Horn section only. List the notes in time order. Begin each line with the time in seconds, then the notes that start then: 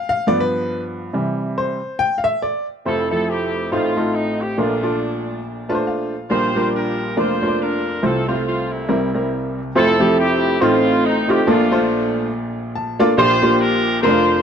2.86 C4 E4 A4
3.10 A4
3.30 C4 E4 G4
3.72 C4 F4
4.15 D#4
4.41 G4
4.59 A3 D4 F4
6.30 F4 G4 C5
6.74 D4 F4 A#4
7.17 F4 C5
7.61 D4 F4 A#4
8.03 C4 F4 A4
8.29 F4
8.47 F4
8.71 G3 A#3 E4
9.76 C4 E4 A4
10.19 C4 E4 G4
10.61 C4 F4
11.05 D#4
11.31 G4
11.48 A3 D4 F4
13.18 F4 G4 C5
13.60 D4 F4 A#4
14.01 F4 C5